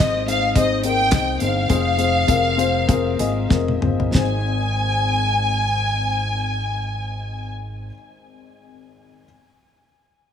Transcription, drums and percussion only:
0.00 kick medium
0.00 snare loud
0.00 clap medium
0.00 closed hi-hat medium
0.28 closed hi-hat medium
0.56 kick loud
0.56 closed hi-hat medium
0.83 closed hi-hat medium
1.11 kick loud
1.11 snare medium
1.11 clap medium
1.11 closed hi-hat medium
1.40 closed hi-hat medium
1.70 kick medium
1.70 closed hi-hat medium
1.99 closed hi-hat medium
2.28 kick medium
2.28 closed hi-hat medium
2.59 closed hi-hat medium
2.89 kick medium
2.89 closed hi-hat medium
3.19 closed hi-hat medium
3.50 kick medium
3.50 snare soft
3.68 high tom soft
3.82 mid tom medium
4.00 floor tom medium
4.14 kick medium
4.14 snare medium

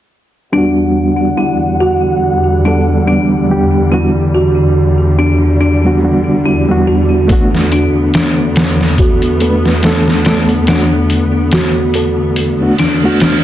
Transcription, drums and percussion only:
7.29 kick loud
7.29 closed hi-hat medium
7.55 snare soft
7.72 closed hi-hat medium
8.14 snare loud
8.14 closed hi-hat medium
8.56 snare medium
8.56 closed hi-hat medium
8.81 snare soft
8.98 kick loud
8.98 closed hi-hat medium
9.22 closed hi-hat soft
9.40 closed hi-hat medium
9.65 snare soft
9.83 snare loud
9.83 closed hi-hat medium
10.08 snare soft
10.25 snare medium
10.25 closed hi-hat medium
10.49 closed hi-hat soft
10.67 snare medium
10.67 closed hi-hat medium
11.10 closed hi-hat medium
11.52 snare loud
11.52 closed hi-hat medium
11.94 closed hi-hat medium
12.36 closed hi-hat medium
12.78 snare soft
12.78 closed hi-hat medium
13.20 snare loud
13.20 closed hi-hat medium

